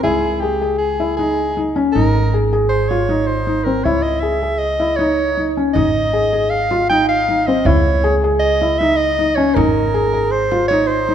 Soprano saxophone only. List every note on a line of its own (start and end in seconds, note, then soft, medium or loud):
0.03 0.42 G#4 medium
0.40 0.78 G4 medium
0.78 1.15 G#4 medium
1.17 1.71 G#4 medium
1.92 2.40 A#4 medium
2.69 2.90 C5 medium
2.89 3.29 C#5 medium
3.27 3.65 C5 medium
3.64 3.85 A#4 medium
3.84 4.04 C#5 medium
4.03 4.21 D#5 medium
4.20 4.60 E5 medium
4.58 4.98 D#5 loud
4.97 5.56 C#5 medium
5.74 6.51 D#5 loud
6.50 6.89 F5 medium
6.89 7.08 G5 loud
7.09 7.48 F5 medium
7.46 7.68 D#5 medium
7.66 8.16 C#5 medium
8.40 8.80 D#5 loud
8.78 8.98 E5 loud
8.97 9.37 D#5 loud
9.36 9.56 C#5 medium
9.55 10.33 A#4 medium
10.31 10.67 C5 loud
10.68 10.89 C#5 medium
10.87 11.15 C5 medium